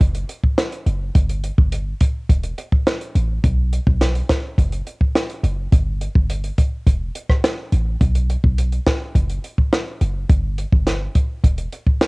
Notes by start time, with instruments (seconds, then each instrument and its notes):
0.01 808-style bass F#1, kick, closed hi-hat
0.15 closed hi-hat
0.29 closed hi-hat
0.44 kick
0.58 snare, closed hi-hat
0.72 closed hi-hat
0.86 808-style bass F#1, closed hi-hat
1.15 808-style bass G1, kick, closed hi-hat
1.29 closed hi-hat
1.44 closed hi-hat
1.58 808-style bass G1, kick
1.72 closed hi-hat
2.01 kick, closed hi-hat
2.29 808-style bass E1, kick, closed hi-hat
2.43 closed hi-hat
2.58 closed hi-hat
2.72 kick
2.87 snare, closed hi-hat
3.01 closed hi-hat
3.15 808-style bass A1, closed hi-hat
3.44 808-style bass B1, kick, closed hi-hat
3.73 closed hi-hat
3.87 808-style bass B1, kick
4.01 snare, closed hi-hat
4.15 closed hi-hat
4.29 kick, snare, closed hi-hat
4.58 808-style bass F#1, kick, closed hi-hat
4.72 closed hi-hat
4.87 closed hi-hat
5.01 kick
5.15 snare, closed hi-hat
5.30 closed hi-hat
5.44 808-style bass F#1, closed hi-hat
5.72 808-style bass G1, kick, closed hi-hat
6.01 closed hi-hat
6.15 808-style bass G1, kick
6.30 closed hi-hat
6.44 closed hi-hat
6.58 kick, closed hi-hat
6.87 808-style bass E1, kick, closed hi-hat
7.15 closed hi-hat
7.29 kick, cross-stick
7.44 snare, closed hi-hat
7.72 808-style bass A1, closed hi-hat
8.01 808-style bass B1, kick, closed hi-hat
8.15 closed hi-hat
8.30 closed hi-hat
8.44 808-style bass B1, kick
8.58 closed hi-hat
8.72 closed hi-hat
8.87 kick, snare, closed hi-hat
9.15 808-style bass F#1, kick, closed hi-hat
9.29 closed hi-hat
9.44 closed hi-hat
9.58 kick
9.73 snare, closed hi-hat
10.01 808-style bass F#1, closed hi-hat
10.29 808-style bass G1, kick, closed hi-hat
10.58 closed hi-hat
10.72 808-style bass G1, kick
10.87 snare, closed hi-hat
11.15 kick, closed hi-hat
11.44 808-style bass E1, kick, closed hi-hat
11.58 closed hi-hat
11.72 closed hi-hat
11.87 kick
12.01 snare, closed hi-hat